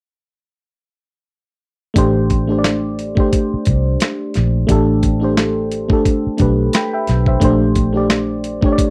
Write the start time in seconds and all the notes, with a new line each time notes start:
1.94 A1 A3 D4 G4, kick, closed hi-hat
1.98 C5
2.30 kick, closed hi-hat
2.47 A3 D4 G4
2.52 C5
2.58 D5
2.64 snare, closed hi-hat
2.99 closed hi-hat
3.15 A3 D4 G4, kick
3.20 C5
3.33 kick, closed hi-hat
3.54 muted fingered electric bass stroke
3.65 C2, kick, closed hi-hat
4.00 snare, closed hi-hat
4.34 A#1, snare, closed hi-hat
4.67 A1 A3 D4 G4, kick, closed hi-hat
4.72 A4
5.03 kick, closed hi-hat
5.20 A3 D4 G4
5.24 C5
5.37 snare, closed hi-hat
5.72 closed hi-hat
5.88 A3 D4 G4, kick
5.93 A4
6.05 kick, closed hi-hat
6.27 muted fingered electric bass stroke
6.37 B1 A3 D4 G4, kick, closed hi-hat
6.42 B4
6.73 G5 B5, snare, closed hi-hat
6.94 E5 G5
7.07 B1, snare, closed hi-hat
7.26 C5 E5, kick
7.40 A#1 A3 D4 G4, kick, closed hi-hat
7.45 C5
7.75 kick, closed hi-hat
7.93 A3 D4 G4
7.97 D5
8.10 snare, closed hi-hat
8.44 closed hi-hat
8.61 A3 D4 G4, kick
8.66 C#5
8.72 D5
8.78 kick, closed hi-hat